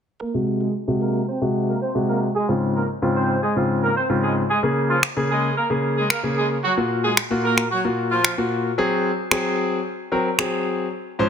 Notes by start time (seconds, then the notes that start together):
0.21 A#3 A#4
0.34 C3 G#3 F#4
0.61 G#3 G#4
0.88 C3 G#3 F#4
1.02 A#3 A#4
1.28 C4 C5
1.41 C3 G#3 F#4
1.69 A#3 A#4
1.82 C4 C5
1.95 C3 G#3 F#4
2.09 A#3 A#4
2.36 G#3 G#4
2.49 G#2 C#3 C4 F4
2.76 A#3 A#4
3.02 G#2 C#3 C4 F4
3.16 C4 C5
3.43 G#3 G#4
3.56 G#2 C#3 C4 F4
3.83 A#3 A#4
3.97 C4 C5
4.09 G#2 C#3 C4 F4
4.23 G#3 G#4
4.50 G#3 G#4
4.63 C#3 A#3 G#4
4.90 F3 F4
5.03 finger snap
5.16 C#3 A#3 G#4
5.30 G#3 G#4
5.57 A#3 A#4
5.70 C#3 A#3 G#4
5.97 G#3 G#4
6.10 A#3 A#4, finger snap
6.23 C#3 A#3 G#4
6.37 G#3 G#4
6.64 F#3 F#4
6.77 A#2 A#3 F4 F#4
7.04 G#3 G#4
7.17 finger snap
7.30 A#2 A#3 F4 F#4
7.44 A#3 A#4
7.58 finger snap
7.71 F#3 F#4
7.84 A#2 A#3 F4 F#4
8.11 F3 F4
8.25 finger snap
8.38 A#2 A#3 F4 F#4
8.78 F#3 C4 G#4
9.31 F#3 C4 G#4, finger snap
10.12 F#3 C4 A#4
10.38 F#3 C4 G#4, finger snap
11.19 G#2 F3 C#4 C5